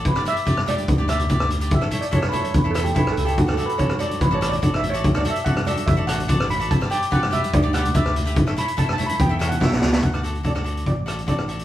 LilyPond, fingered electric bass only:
\new Staff \with { instrumentName = "Fingered electric bass" } { \clef bass \time 4/4 \key d \major \tempo 4 = 144 g,,8 r4. d,4 d,4 | a,,8 r4. e,4 b,,8 cis,8 | d,8 r4. a,,4 a,,4 | d,8 r4. a,,4 a,,4 |
g,,8 r4. d,4 d,4 | a,,8 r4. e,4 b,,8 cis,8 | d,4 d,4 a,,2 | }